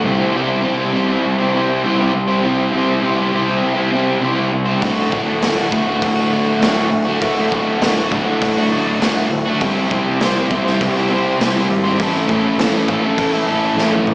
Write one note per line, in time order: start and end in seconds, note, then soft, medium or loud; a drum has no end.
0.03 0.31 C2 medium
0.03 0.62 C3 medium
0.03 0.63 G3 medium
0.03 0.32 C4 medium
0.03 0.34 E4 medium
0.03 0.35 G4 medium
0.07 0.36 C5 loud
0.32 0.61 C2 medium
0.32 0.64 C4 medium
0.32 0.64 E4 medium
0.32 0.65 G4 medium
0.37 0.66 C5 loud
0.62 1.82 C3 loud
0.62 1.83 G3 medium
0.62 0.80 C4 loud
0.62 0.79 E4 loud
0.62 0.78 G4 loud
0.66 0.92 C2 medium
0.66 0.76 C5 loud
0.76 0.94 E4 medium
0.76 0.95 G4 medium
0.76 0.96 C5 medium
0.81 0.92 C4 medium
0.92 1.21 C2 medium
0.92 1.12 C4 medium
0.92 1.11 E4 medium
0.92 1.09 G4 medium
0.97 1.07 C5 medium
1.08 1.40 E4 medium
1.08 1.39 G4 medium
1.08 1.37 C5 medium
1.14 1.42 C4 medium
1.26 1.78 C2 medium
1.38 1.53 E4 medium
1.38 1.55 G4 medium
1.38 1.56 C5 medium
1.43 1.51 C4 medium
1.53 1.84 C4 medium
1.53 1.84 E4 medium
1.53 1.85 G4 medium
1.57 1.86 C5 medium
1.83 2.11 C2 medium
1.83 2.28 C3 medium
1.83 2.29 G3 medium
1.83 2.01 C4 medium
1.83 2.00 E4 loud
1.87 1.99 G4 loud
1.87 1.97 C5 medium
1.98 2.13 E4 medium
1.98 2.13 G4 medium
1.98 2.14 C5 medium
2.02 2.12 C4 medium
2.14 2.41 C2 medium
2.14 muted overdriven electric guitar stroke medium
2.28 2.44 E4 medium
2.28 2.45 G4 medium
2.28 2.46 C5 medium
2.33 2.44 C4 medium
2.43 2.70 C2 medium
2.43 3.01 C3 medium
2.43 3.02 G3 medium
2.43 2.72 C4 medium
2.43 2.74 E4 medium
2.43 2.75 G4 medium
2.47 2.76 C5 medium
2.73 3.00 C2 medium
2.73 3.03 C4 medium
2.73 3.04 E4 medium
2.73 3.04 G4 medium
2.77 3.05 C5 loud
3.02 3.30 C2 medium
3.02 3.48 C3 loud
3.02 3.48 G3 loud
3.02 3.20 C4 medium
3.02 3.19 E4 loud
3.02 3.17 G4 loud
3.06 3.15 C5 loud
3.17 3.33 E4 medium
3.17 3.34 G4 medium
3.17 3.35 C5 medium
3.22 3.30 C4 medium
3.32 3.60 C2 medium
3.32 3.50 C4 medium
3.32 3.49 E4 medium
3.32 3.47 G4 medium
3.36 3.45 C5 medium
3.46 3.76 E4 medium
3.46 3.76 G4 medium
3.46 3.73 C5 medium
3.51 3.78 C4 medium
3.64 4.17 C2 medium
3.75 3.92 E4 medium
3.75 3.94 G4 medium
3.75 3.94 C5 medium
3.79 3.90 C4 medium
3.91 4.21 C4 medium
3.91 4.22 E4 medium
3.91 4.23 G4 medium
3.96 4.24 C5 medium
4.20 4.50 C2 medium
4.20 4.67 C3 medium
4.20 4.67 G3 loud
4.20 4.39 C4 medium
4.20 4.37 E4 loud
4.20 4.36 G4 loud
4.25 4.34 C5 loud
4.35 4.51 E4 medium
4.35 4.52 G4 medium
4.35 4.52 C5 medium
4.40 4.51 C4 medium
4.52 4.80 C2 medium
4.52 muted overdriven electric guitar stroke soft
4.65 4.81 E4 medium
4.65 4.81 G4 medium
4.65 4.80 C5 medium
4.70 4.82 C4 medium
4.81 5.41 D2 medium
4.81 5.10 A2 medium
4.81 5.12 D3 medium
4.81 5.14 A3 medium
4.81 kick loud
4.81 open hi-hat medium
4.85 5.15 F#4 medium
5.11 5.39 D1 medium
5.11 5.42 A2 medium
5.11 5.43 D3 medium
5.11 5.45 A3 medium
5.11 kick medium
5.16 5.45 F#4 medium
5.42 5.69 D1 medium
5.42 6.59 D2 loud
5.42 5.70 A2 loud
5.42 5.62 D3 loud
5.42 5.59 A3 medium
5.42 5.57 F#4 loud
5.42 snare loud
5.42 open hi-hat medium
5.57 5.75 A3 medium
5.57 5.76 F#4 medium
5.62 5.74 D3 medium
5.72 5.99 D1 medium
5.72 6.17 A2 medium
5.72 5.90 D3 medium
5.72 5.89 A3 medium
5.72 kick loud
5.77 5.86 F#4 medium
5.87 6.17 A3 medium
5.87 6.14 F#4 medium
5.91 6.19 D3 medium
6.02 6.55 D1 medium
6.02 kick loud
6.02 open hi-hat medium
6.15 6.31 A3 medium
6.15 6.33 F#4 medium
6.20 6.30 D3 medium
6.29 6.60 A2 medium
6.29 6.61 D3 medium
6.29 6.61 A3 medium
6.34 6.62 F#4 medium
6.60 6.89 D1 medium
6.60 7.06 D2 medium
6.60 6.89 A2 medium
6.60 6.77 D3 loud
6.60 6.75 A3 loud
6.60 snare loud
6.60 open hi-hat medium
6.64 6.72 F#4 loud
6.73 6.89 A3 medium
6.73 6.90 F#4 medium
6.79 6.89 D3 medium
6.90 7.18 D1 medium
6.90 muted overdriven electric guitar stroke soft
7.05 7.21 A3 medium
7.05 7.22 F#4 medium
7.09 7.21 D3 medium
7.19 7.49 D1 medium
7.19 7.78 D2 medium
7.19 7.48 A2 medium
7.19 7.50 D3 medium
7.19 7.51 A3 medium
7.19 kick loud
7.19 open hi-hat medium
7.23 7.53 F#4 medium
7.50 7.78 D1 medium
7.50 7.79 A2 medium
7.50 7.81 D3 medium
7.50 7.82 A3 medium
7.50 kick medium
7.54 7.83 F#4 medium
7.79 8.25 D2 medium
7.79 8.09 A2 loud
7.79 7.97 D3 loud
7.79 7.96 A3 loud
7.79 snare loud
7.79 open hi-hat medium
7.84 8.09 D1 medium
7.84 7.93 F#4 loud
7.94 8.11 A3 medium
7.94 8.12 F#4 medium
7.98 8.10 D3 medium
8.10 8.38 D1 medium
8.10 8.55 A2 medium
8.10 8.28 D3 medium
8.10 8.26 A3 medium
8.10 8.24 F#4 medium
8.10 kick medium
8.25 8.55 A3 medium
8.25 8.53 F#4 medium
8.29 8.58 D3 medium
8.42 8.95 D1 medium
8.42 kick loud
8.42 open hi-hat medium
8.54 8.71 A3 medium
8.54 8.73 F#4 medium
8.59 8.70 D3 medium
8.69 8.99 A2 medium
8.69 9.00 D3 medium
8.69 9.01 A3 medium
8.74 9.03 F#4 medium
8.99 9.28 D1 medium
8.99 9.45 D2 loud
8.99 9.30 A2 medium
8.99 9.18 D3 loud
8.99 9.16 A3 medium
8.99 snare loud
8.99 open hi-hat medium
9.04 9.14 F#4 loud
9.15 9.31 A3 medium
9.15 9.31 F#4 medium
9.20 9.30 D3 medium
9.31 9.57 D1 medium
9.31 muted overdriven electric guitar stroke soft
9.46 9.60 A3 medium
9.46 9.59 F#4 medium
9.50 9.61 D3 medium
9.61 9.87 C2 medium
9.61 10.19 C3 medium
9.61 10.21 G3 medium
9.61 9.89 C4 medium
9.61 9.91 E4 medium
9.61 9.92 G4 loud
9.61 kick loud
9.61 open hi-hat soft
9.66 9.93 C5 medium
9.90 10.17 C2 medium
9.90 10.21 C4 medium
9.90 10.23 E4 medium
9.90 10.24 G4 medium
9.90 kick medium
9.94 10.24 C5 medium
10.20 10.47 C2 medium
10.20 10.65 C3 medium
10.20 11.39 G3 loud
10.20 10.39 C4 loud
10.20 10.38 E4 loud
10.20 10.37 G4 loud
10.20 snare loud
10.20 open hi-hat medium
10.25 10.35 C5 loud
10.36 10.51 E4 medium
10.36 10.53 G4 medium
10.36 10.54 C5 medium
10.40 10.49 C4 medium
10.50 10.77 C2 medium
10.50 10.68 C4 medium
10.50 10.66 E4 medium
10.50 10.65 G4 medium
10.50 kick loud
10.55 10.64 C5 medium
10.65 10.98 E4 medium
10.65 10.96 G4 medium
10.65 10.95 C5 medium
10.65 snare soft
10.69 10.99 C4 medium
10.81 11.33 C2 loud
10.81 kick loud
10.81 open hi-hat medium
10.96 11.11 E4 medium
10.96 11.12 G4 medium
10.96 11.13 C5 medium
11.00 11.08 C4 medium
11.09 11.40 C4 medium
11.09 11.41 E4 medium
11.09 11.41 G4 medium
11.14 11.42 C5 medium
11.39 11.67 C2 medium
11.39 11.84 C3 medium
11.39 11.84 G3 loud
11.39 11.57 C4 medium
11.39 11.55 E4 medium
11.39 11.54 G4 loud
11.39 snare loud
11.39 open hi-hat medium
11.43 11.52 C5 loud
11.53 11.69 E4 medium
11.53 11.69 G4 medium
11.53 11.70 C5 medium
11.58 11.69 C4 medium
11.69 11.95 G#1 medium
11.69 muted overdriven electric guitar stroke soft
11.83 11.98 E4 medium
11.83 11.98 G4 medium
11.83 11.97 C5 medium
11.88 11.99 C4 medium
11.98 12.25 A1 medium
11.98 12.57 A2 medium
11.98 12.58 E3 medium
11.98 12.27 A3 medium
11.98 12.28 C#4 medium
11.98 12.30 E4 medium
11.98 kick loud
11.98 open hi-hat medium
12.03 12.31 A4 loud
12.28 12.55 A1 medium
12.28 12.58 A3 medium
12.28 12.60 C#4 medium
12.28 12.61 E4 medium
12.28 kick medium
12.32 12.61 A4 medium
12.58 12.84 A1 medium
12.58 13.02 A2 loud
12.58 13.03 E3 medium
12.58 12.76 A3 loud
12.58 12.75 C#4 loud
12.58 snare loud
12.58 open hi-hat medium
12.62 12.74 E4 loud
12.62 12.72 A4 loud
12.73 12.88 C#4 medium
12.73 12.90 E4 medium
12.73 12.91 A4 medium
12.77 12.87 A3 medium
12.88 13.14 A1 medium
12.88 13.07 A3 medium
12.88 13.05 C#4 medium
12.88 13.04 E4 medium
12.88 kick medium
12.93 13.02 A4 medium
13.03 13.34 C#4 medium
13.03 13.33 E4 medium
13.03 13.31 A4 medium
13.08 13.35 A3 medium
13.18 13.70 A1 medium
13.18 kick loud
13.18 open hi-hat medium
13.32 13.46 C#4 medium
13.32 13.48 E4 medium
13.32 13.50 A4 medium
13.36 13.45 A3 medium
13.47 13.77 A3 medium
13.47 13.78 C#4 medium
13.47 13.79 E4 medium
13.51 13.80 A4 medium
13.76 14.02 A1 medium
13.76 14.14 A2 medium
13.76 14.14 E3 medium
13.76 13.94 A3 loud
13.76 13.93 C#4 loud
13.76 snare medium
13.80 13.91 E4 loud
13.80 13.90 A4 loud
13.91 14.05 C#4 medium
13.91 14.06 E4 medium
13.91 14.06 A4 medium
13.91 high tom medium
13.95 14.05 A3 medium
14.06 14.14 C#2 medium
14.06 muted overdriven electric guitar stroke soft
14.06 mid tom medium